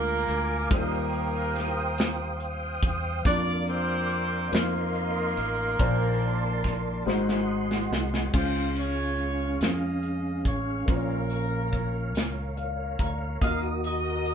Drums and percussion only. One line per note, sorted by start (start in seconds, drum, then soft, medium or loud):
0.28 closed hi-hat medium
0.71 kick loud
0.71 closed hi-hat medium
1.13 closed hi-hat soft
1.56 snare soft
1.56 closed hi-hat medium
1.98 snare loud
1.98 closed hi-hat medium
2.40 closed hi-hat soft
2.83 kick medium
2.83 closed hi-hat medium
3.25 kick loud
3.25 closed hi-hat medium
3.68 closed hi-hat soft
4.10 closed hi-hat medium
4.53 snare loud
4.53 closed hi-hat medium
4.95 closed hi-hat soft
5.37 closed hi-hat medium
5.79 kick loud
5.79 closed hi-hat medium
6.22 closed hi-hat soft
6.64 kick medium
6.64 snare soft
6.64 closed hi-hat medium
7.08 snare medium
7.29 snare medium
7.71 snare medium
7.93 snare medium
8.14 snare medium
8.33 kick medium
8.33 crash medium
8.33 tambourine soft
8.76 closed hi-hat soft
8.76 tambourine medium
9.19 closed hi-hat soft
9.61 snare loud
9.61 closed hi-hat medium
9.61 tambourine medium
10.03 closed hi-hat soft
10.45 kick medium
10.45 closed hi-hat soft
10.45 tambourine soft
10.88 kick medium
10.88 closed hi-hat medium
10.88 tambourine soft
11.30 closed hi-hat soft
11.30 tambourine medium
11.73 kick medium
11.73 closed hi-hat soft
12.15 snare medium
12.15 closed hi-hat medium
12.15 tambourine medium
12.57 closed hi-hat soft
12.99 kick medium
12.99 closed hi-hat soft
12.99 tambourine soft
13.42 kick loud
13.42 closed hi-hat medium
13.42 tambourine soft
13.84 closed hi-hat soft
13.84 tambourine medium
14.26 closed hi-hat soft